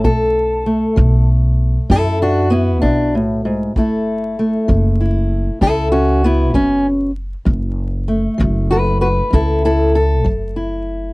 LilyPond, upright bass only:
\new Staff \with { instrumentName = "Upright bass" } { \clef bass \time 12/8 \key fis \minor \tempo 4. = 65 b,,4. b,,4. fis,4. b,,4. | fis,,4. fis,,4. cis,4. fis,,4. | fis,,4. fis,,4. cis,4. fis,,4. | }